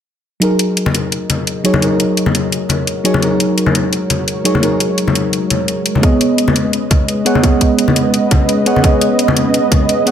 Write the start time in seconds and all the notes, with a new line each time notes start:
0.40 F#3 G#3 D#4 F#4 G#4 A#4 D#5, closed hi-hat
0.59 closed hi-hat
0.77 closed hi-hat
0.86 high conga
0.95 closed hi-hat
1.12 closed hi-hat
1.30 closed hi-hat, high conga
1.47 closed hi-hat
1.64 F#3 D#4 G#4 C#5, closed hi-hat
1.74 high conga
1.81 F#3 D#4 G#4 A#4, closed hi-hat
2.00 closed hi-hat
2.17 closed hi-hat
2.26 high conga
2.35 closed hi-hat
2.52 closed hi-hat
2.69 closed hi-hat, high conga
2.87 closed hi-hat
3.04 F#3 D#4 G#4 C#5, closed hi-hat
3.14 high conga
3.21 F#3 D#4 G#4 A#4 C#5, closed hi-hat
3.40 closed hi-hat
3.58 closed hi-hat
3.66 high conga
3.75 closed hi-hat
3.93 closed hi-hat
4.10 closed hi-hat, high conga
4.28 closed hi-hat
4.44 F#3 D#4 G#4 C#5, closed hi-hat
4.55 high conga
4.61 F#3 D#4 G#4 A#4, closed hi-hat
4.80 closed hi-hat
4.98 closed hi-hat
5.08 high conga
5.15 closed hi-hat
5.33 closed hi-hat
5.50 closed hi-hat, high conga
5.68 closed hi-hat
5.86 closed hi-hat
5.95 high conga
6.02 B3 C#4 G#4 B4 C#5 D#5, kick, closed hi-hat
6.21 closed hi-hat
6.38 closed hi-hat
6.48 high conga
6.56 closed hi-hat
6.73 closed hi-hat
6.90 kick, closed hi-hat, high conga
7.08 closed hi-hat
7.25 B3 G#4 C#5 F#5, closed hi-hat
7.35 high conga
7.42 B3 G#4 C#5 D#5, kick, closed hi-hat
7.61 kick, closed hi-hat
7.79 closed hi-hat
7.88 high conga
7.96 closed hi-hat
8.14 closed hi-hat
8.31 kick, closed hi-hat, high conga
8.49 closed hi-hat
8.66 B3 G#4 C#5 F#5, closed hi-hat
8.76 high conga
8.82 B3 G#4 C#5 D#5, kick, closed hi-hat
9.01 closed hi-hat
9.19 closed hi-hat
9.28 high conga
9.37 closed hi-hat
9.54 closed hi-hat
9.72 kick, closed hi-hat, high conga
9.89 closed hi-hat
10.06 B3 G#4 C#5 F#5, closed hi-hat